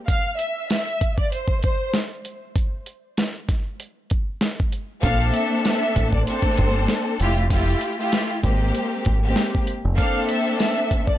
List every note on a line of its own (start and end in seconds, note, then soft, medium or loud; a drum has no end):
0.08 0.36 F5 medium
0.08 kick loud
0.08 closed hi-hat loud
0.39 0.67 E5 medium
0.39 closed hi-hat medium
0.70 1.15 E5 medium
0.70 snare loud
0.70 closed hi-hat loud
1.01 kick medium
1.01 closed hi-hat medium
1.18 1.31 D5 medium
1.18 kick medium
1.32 1.60 C5 medium
1.32 closed hi-hat medium
1.48 kick medium
1.62 1.90 C5 medium
1.62 kick loud
1.62 closed hi-hat medium
1.94 snare loud
1.94 closed hi-hat medium
2.25 closed hi-hat medium
2.56 kick loud
2.56 closed hi-hat loud
2.86 closed hi-hat medium
3.17 snare loud
3.17 closed hi-hat loud
3.48 kick medium
3.48 snare soft
3.48 closed hi-hat medium
3.80 closed hi-hat medium
4.10 kick loud
4.10 closed hi-hat medium
4.41 snare loud
4.41 closed hi-hat medium
4.60 kick medium
4.72 closed hi-hat medium
5.01 5.30 A#1 loud
5.01 6.17 A#3 loud
5.01 6.17 C4 medium
5.01 6.18 D4 medium
5.01 6.18 A4 loud
5.01 5.31 F5 loud
5.01 kick loud
5.01 closed hi-hat loud
5.34 5.62 E5 medium
5.34 closed hi-hat medium
5.65 6.11 E5 medium
5.65 snare loud
5.65 closed hi-hat loud
5.96 6.23 A1 medium
5.96 kick medium
5.96 closed hi-hat medium
6.13 6.26 D5 medium
6.13 kick medium
6.26 7.19 A#3 loud
6.26 7.19 C4 loud
6.26 7.20 D4 medium
6.26 7.20 A4 loud
6.26 6.54 C5 medium
6.26 closed hi-hat medium
6.42 kick medium
6.57 6.85 G1 medium
6.57 6.86 C5 medium
6.57 kick loud
6.57 closed hi-hat medium
6.88 snare loud
6.88 closed hi-hat medium
7.19 7.74 F1 medium
7.19 7.41 A3 loud
7.19 7.41 E4 medium
7.19 7.41 F4 medium
7.19 7.42 G4 loud
7.19 closed hi-hat medium
7.49 7.94 A3 medium
7.49 7.94 E4 medium
7.49 7.94 F4 medium
7.49 7.95 G4 loud
7.49 kick loud
7.49 closed hi-hat loud
7.81 closed hi-hat medium
7.97 8.39 A3 loud
7.97 8.40 E4 medium
7.97 8.40 F4 medium
7.97 8.40 G4 loud
8.12 snare loud
8.12 closed hi-hat loud
8.42 8.71 G#1 loud
8.42 9.15 G#3 loud
8.42 9.15 A#3 medium
8.42 9.16 C4 medium
8.42 9.16 G4 loud
8.42 kick medium
8.42 closed hi-hat medium
8.75 closed hi-hat medium
9.05 9.33 G#1 medium
9.05 kick loud
9.05 closed hi-hat medium
9.23 9.64 G#3 loud
9.23 9.64 A#3 medium
9.23 9.65 C4 medium
9.23 9.65 G4 loud
9.36 snare loud
9.36 closed hi-hat medium
9.55 kick medium
9.67 closed hi-hat medium
9.85 9.97 F1 medium
9.96 11.12 A#3 loud
9.96 11.12 C4 medium
9.96 11.12 D4 medium
9.96 11.13 A4 loud
9.96 10.26 F5 medium
9.96 kick loud
9.96 closed hi-hat loud
10.29 10.57 E5 medium
10.29 closed hi-hat medium
10.60 11.05 E5 medium
10.60 snare loud
10.60 closed hi-hat loud
10.91 kick medium
10.91 closed hi-hat medium
11.07 11.18 D5 medium
11.07 kick medium